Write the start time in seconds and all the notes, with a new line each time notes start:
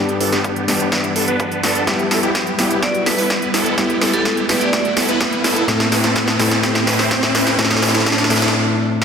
Already playing: G2 G3 B3 D4 G4, riser
0.09 closed hi-hat
0.21 G1 B3 D4 A4, open hi-hat
0.32 B3 D4 G4, snare, closed hi-hat
0.44 B3 D4, kick, closed hi-hat
0.56 closed hi-hat
0.67 G1 G2 G3 B3 D4 G4, snare, open hi-hat
0.80 G1, closed hi-hat
0.92 B3 D4 E4, kick, snare, closed hi-hat
1.04 closed hi-hat
1.16 G1 B3 D4 A4, open hi-hat
1.28 B3 D4 B4, closed hi-hat
1.40 B3 D4 B4, kick, closed hi-hat
1.52 closed hi-hat
1.63 G1 B3 D4 A4, snare, open hi-hat
1.75 closed hi-hat
1.86 G3 B3 E4 G4, kick, snare, closed hi-hat
1.99 closed hi-hat
2.11 E1 B3 E4 A4, snare, open hi-hat
2.23 B3 E4 G4, closed hi-hat
2.35 B3, kick, snare, closed hi-hat
2.47 closed hi-hat
2.58 E1 G3 B3 E4 G4, snare, open hi-hat
2.71 E1, closed hi-hat
2.82 B3 E4 F#4 D5, kick, snare, closed hi-hat
2.94 closed hi-hat
3.06 E1 B3 E4 A4 B4, snare, open hi-hat
3.18 B3 E4 B4, open hi-hat
3.30 kick, snare, closed hi-hat
3.42 closed hi-hat
3.54 E1 B3 E4 A4, snare, open hi-hat
3.66 closed hi-hat
3.77 G3 B3 E4 G4, kick, snare, closed hi-hat
3.90 closed hi-hat
4.01 E1 B3 E4 A4, snare, open hi-hat
4.13 B3 E4 G4 A4, closed hi-hat
4.25 B3 E4 G4, kick, snare, closed hi-hat
4.37 closed hi-hat
4.48 E1 G3 B3 E4 G4 B4, snare, open hi-hat
4.61 E1 D5, closed hi-hat
4.73 E4 F#4 D5, kick, snare, closed hi-hat
4.85 closed hi-hat
4.97 E1 B3 E4 A4, snare, open hi-hat
5.09 B3 E4 B4, closed hi-hat
5.21 B3, kick, snare, closed hi-hat
5.32 closed hi-hat
5.44 E1 B3 E4 A4, snare, open hi-hat
5.56 closed hi-hat
5.67 A2 A3 C4 E4 A4, kick, snare, closed hi-hat
5.80 snare, closed hi-hat
5.92 A1 C4 E4 B4, snare, open hi-hat
6.04 C4 E4 A4, snare, closed hi-hat
6.16 C4 E4 A4, kick, snare, closed hi-hat
6.28 snare, closed hi-hat
6.38 A1 A2 A3 C4 E4 A4, snare, open hi-hat
6.51 snare, closed hi-hat
6.63 C4 E4 G4, kick, snare, closed hi-hat
6.75 snare, closed hi-hat
6.87 A1 C4 E4 B4, snare, open hi-hat
6.99 C4 E4 C5, snare, open hi-hat
7.11 C4 E4 C5, kick, snare, closed hi-hat
7.23 snare, closed hi-hat
7.35 A1 C4 E4 B4, snare, open hi-hat
7.47 snare, closed hi-hat
7.58 A2 A3 C4 E4 A4, kick, snare, closed hi-hat
7.65 snare
7.71 snare, closed hi-hat
7.77 snare
7.82 A1 C4 E4 B4, snare, open hi-hat
7.88 snare
7.94 C4 E4 A4, snare, closed hi-hat
8.00 snare
8.06 C4 E4 A4, kick, snare, closed hi-hat
8.12 snare
8.18 snare, closed hi-hat
8.24 snare
8.29 A1 A2 A3 C4 E4 A4, snare, open hi-hat
8.36 snare
8.42 A1, snare, closed hi-hat
8.48 snare